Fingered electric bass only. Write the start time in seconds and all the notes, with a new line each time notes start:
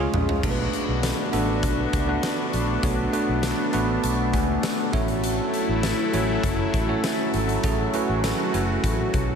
0.14 A#1
0.43 B1
0.88 B1
1.33 A1
1.63 B1
1.93 C#2
2.54 A#1
2.83 B1
3.29 B1
3.74 A1
4.04 B1
4.34 C#2
4.93 A1
5.69 A1
6.14 A1
6.43 F#1
6.74 A1
7.34 G#1
7.64 A1
8.09 A1
8.54 F#1
8.84 A1
9.14 B1